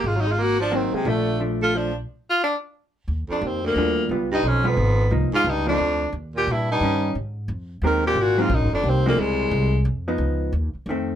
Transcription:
X:1
M:3/4
L:1/8
Q:"Swing" 1/4=177
K:Bb
V:1 name="Tenor saxophone"
(3F E F _G D C _A, | A,2 z F D z | z F D z3 | [K:Eb] z D C B,3 |
z E _D _C3 | z F E D3 | z G _F E3 | z4 B G |
_G F E D C B, | A,4 z2 | z6 |]
V:2 name="Hollow-body jazz guitar"
z4 [_G,B,C]2 | [F,A,D]2 [F,A,D]3 z | z6 | [K:Eb] z4 [G,DF]2 |
[G,_CF] z2 [G,CF] z2 | [F,B,E] z2 [F,B,E] z2 | z4 [E,G,_D]2 | z4 [A,CGB]2 |
z [_G,B,C] z3 [F,A,C] | z4 z [F,_CE]- | [F,_CE]2 z2 [E,=A,=C]2 |]
V:3 name="Baritone saxophone" clef=bass
(3_A, _G, A, B, F, E, C, | D,2 z A, F, z | z6 | [K:Eb] z F,, E,, D,,3 |
z G,, F,, F,,3 | z A,, G,, F,,3 | z B,, G,, G,,3 | z4 E, B,, |
B,, A,, _G,, F,, E,, D,, | C,,4 z2 | z6 |]
V:4 name="Upright bass" clef=bass
_A,,,4- A,,, z | B,,,6 | z6 | [K:Eb] E,, z F,,2 E,,2 |
_D,,2 _C,,2 A,,,2 | C,, z _D,,2 =D,,2 | E,,2 B,,2 G,,2 | A,,2 F,,2 E,,2 |
A,,,2 (3B,,, A,,, _G,,, C,,2 | _D,,2 C,,2 F,,2 | _D,,2 E,, z F,,2 |]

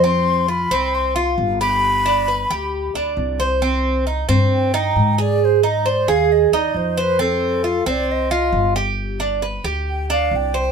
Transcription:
X:1
M:4/4
L:1/8
Q:1/4=134
K:Cm
V:1 name="Flute"
c'2 =b2 c'2 z b- | =b6 z2 | z4 g3 d | c e d f e d c =B |
=A3 d e3 z | z4 g f g2 |]
V:2 name="Cuban tres"
C2 F C2 F2 G- | G D =B G2 D2 c | C2 E C2 E2 A- | A E c A2 E2 c |
C2 F C2 F2 G- | G D =B G2 D2 c |]
V:3 name="Upright bass" clef=bass
F,,3 C,,3 G,,,2- | G,,,3 D,,2 D,, C,,2- | C,,3 G,,3 A,,2- | A,,3 E,,2 E,, F,,2- |
F,,3 C,,3 G,,,2- | G,,,3 D,,3 C,,2 |]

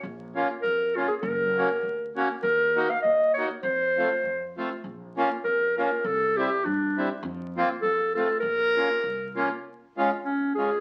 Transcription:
X:1
M:2/4
L:1/16
Q:"Swing" 1/4=100
K:Bbm
V:1 name="Clarinet"
z4 B2 F A | B6 z2 | B3 f e2 d2 | c6 z2 |
z4 B2 B2 | =A2 =G2 =D3 z | z4 =A2 A2 | B6 z2 |
[K:Db] z4 D2 A2 |]
V:2 name="Accordion"
z2 [B,DF]2 z2 [B,DF]2 | z2 [B,DG]2 z2 [B,DG]2 | z2 [B,EG]2 z2 [B,EG]2 | z2 [=A,CF]2 z2 [A,CF]2 |
z2 [B,DF]2 z2 [B,DF]2 | z2 [=G,C=E]2 z2 [G,CE]2 | z2 [B,CF]2 z2 [=A,CF]2 | z2 [B,DF]2 z2 [B,DF]2 |
[K:Db] z2 [A,DF]2 z2 [A,DF]2 |]
V:3 name="Upright bass" clef=bass
B,,,4 F,,4 | G,,,4 =D,,4 | E,,4 E,,4 | F,,4 F,,4 |
B,,,4 F,,4 | C,,4 =G,,4 | F,,4 F,,4 | B,,,4 C,,4 |
[K:Db] z8 |]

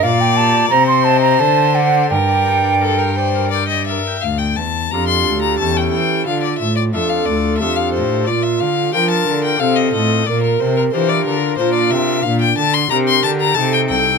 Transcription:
X:1
M:3/4
L:1/16
Q:1/4=90
K:Gm
V:1 name="Violin"
d4 c8 | B4 A B c2 d e =e2 | [K:Dm] f g a2 b c'2 b a g g2 | f d e d e f d2 e f c2 |
d e f2 g a2 g f _e e2 | d B c B c d B2 c d e2 | [K:Gm] f g a c' b c' a b a g g2 |]
V:2 name="Flute"
f g a2 b c' a b a2 ^f2 | g8 z4 | [K:Dm] z4 G8 | F4 A4 G4 |
F4 B4 A4 | B4 G2 z2 F4 | [K:Gm] D4 G4 A4 |]
V:3 name="Pipe organ"
z d G d z c e c z c d c | z d g d B g d B g d B g | [K:Dm] z4 [DFA]4 [^CEA]4 | z4 [DFA]4 [DFA]4 |
z4 [DFB]4 [CFA]4 | z4 [DFB]4 [DFB]4 | [K:Gm] z4 [DGB]4 [EA]4 |]
V:4 name="Pipe organ" clef=bass
B,,4 C,4 D,4 | G,,8- G,,2 z2 | [K:Dm] D,,2 E,,2 F,,2 D,,2 E,,2 E,2 | D,2 A,,2 F,,2 D,,2 F,,2 A,,2 |
B,,2 D,2 F,2 D,2 C,2 A,,2 | B,,2 C,2 E,2 D,2 B,,2 C,2 | [K:Gm] B,,2 D,2 C,2 D,2 C,2 C,,2 |]
V:5 name="Cello" clef=bass
B,,4 C,4 D,4 | G,,8- G,,2 z2 | [K:Dm] D,,2 E,,2 F,,2 D,,2 E,,2 E,2 | D,2 A,,2 F,,2 D,,2 F,,2 A,,2 |
B,,2 D,2 F,2 D,2 C,2 A,,2 | B,,2 C,2 E,2 D,2 B,,2 C,2 | [K:Gm] B,,2 D,2 C,2 D,2 C,2 C,,2 |]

